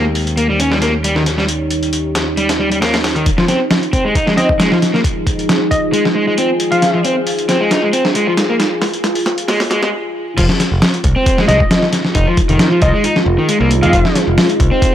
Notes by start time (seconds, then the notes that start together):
Already playing: D#2 D#4 G4 C#5
0.15 open hi-hat
0.27 closed hi-hat
0.37 A#3, closed hi-hat
0.49 G3
0.60 C#4, closed hi-hat
0.72 G3, snare
0.82 A#3, snare, closed hi-hat
1.04 G3, closed hi-hat
1.16 D#3, snare
1.26 snare, closed hi-hat
1.38 G3, snare
1.49 closed hi-hat
1.71 closed hi-hat
1.83 closed hi-hat
1.93 closed hi-hat
2.15 snare, closed hi-hat
2.37 G3, closed hi-hat
2.49 snare, closed hi-hat
2.60 G3
2.71 G3, closed hi-hat
2.82 A#3, snare, open hi-hat
2.94 snare, open hi-hat
3.04 snare, open hi-hat
3.15 D#3, closed hi-hat
3.26 F3 D#4 G#4, kick, closed hi-hat
3.38 F3, snare
3.48 C4, snare, closed hi-hat
3.71 snare, open hi-hat
3.83 closed hi-hat
3.93 C4, kick, closed hi-hat
4.05 G#3
4.15 D#4, kick, closed hi-hat
4.27 G#3, snare
4.37 C4 D#5, snare, closed hi-hat
4.49 kick
4.59 G#3, snare, closed hi-hat
4.71 F3, snare
4.82 snare, closed hi-hat
4.94 A#3, snare
5.04 kick, closed hi-hat
5.27 kick, closed hi-hat
5.39 closed hi-hat
5.49 snare, closed hi-hat
5.71 D#5, kick, closed hi-hat
5.93 G#3, closed hi-hat
6.05 snare
6.15 G#3
6.27 G#3
6.38 C4, closed hi-hat
6.60 closed hi-hat
6.71 F3 F5, closed hi-hat
6.82 F4, snare, closed hi-hat
6.94 F3
7.05 C4, closed hi-hat
7.27 open hi-hat
7.38 closed hi-hat
7.49 C4, snare, closed hi-hat
7.61 G#3
7.71 D#4, snare, closed hi-hat
7.83 G#3
7.93 C4, closed hi-hat
8.05 snare
8.15 G#3, closed hi-hat
8.27 F3
8.37 snare, closed hi-hat
8.50 A#3
8.60 snare, closed hi-hat
8.82 snare, open hi-hat
8.93 closed hi-hat
9.04 snare, closed hi-hat
9.15 open hi-hat
9.26 snare, closed hi-hat
9.38 closed hi-hat
9.48 G#3, snare, open hi-hat
9.60 snare, open hi-hat
9.71 G#3, snare, closed hi-hat
9.83 G#3, snare
10.38 F1 F3 G#3 D#4 F4, kick, closed hi-hat, crash
10.49 snare
10.60 snare, closed hi-hat
10.72 F1
10.82 snare, open hi-hat
10.94 closed hi-hat
11.04 C2, kick, closed hi-hat
11.16 C4
11.26 kick, closed hi-hat
11.38 G#3, snare
11.48 C2 G#3 D#5, snare, closed hi-hat
11.60 kick
11.71 snare, closed hi-hat
11.83 snare
11.93 snare, closed hi-hat
12.05 snare
12.15 F1 D#4, kick, closed hi-hat
12.27 F3
12.37 kick, closed hi-hat
12.49 F1 D#3, closed hi-hat
12.59 snare, closed hi-hat
12.71 F3
12.82 C2 F3 D#5, kick, closed hi-hat
12.94 G#3
13.04 D#4, closed hi-hat
13.16 snare
13.26 F1
13.38 D#3
13.49 G#3, closed hi-hat
13.60 C2 A#3
13.71 closed hi-hat
13.82 F2 G#3 F5, closed hi-hat
13.93 F1 F3, kick, closed hi-hat
14.05 snare
14.15 snare, closed hi-hat
14.28 F1
14.38 snare, open hi-hat
14.50 closed hi-hat
14.60 C2, kick, closed hi-hat
14.71 C4
14.82 kick, closed hi-hat